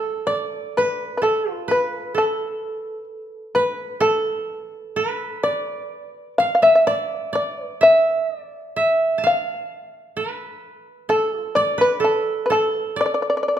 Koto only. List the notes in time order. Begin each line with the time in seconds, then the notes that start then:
Already playing: A4
0.27 D5
0.78 B4
1.22 A4
1.52 F4
1.68 B4
2.15 A4
3.55 B4
4.00 A4
4.96 B4
5.43 D5
6.40 F5
6.62 E5
6.87 D5
7.33 D5
7.81 E5
8.40 D5
8.76 E5
9.18 A5
9.24 F5
10.17 B4
11.09 A4
11.56 D5
11.78 B4
12.00 A4
12.50 A4
12.96 D5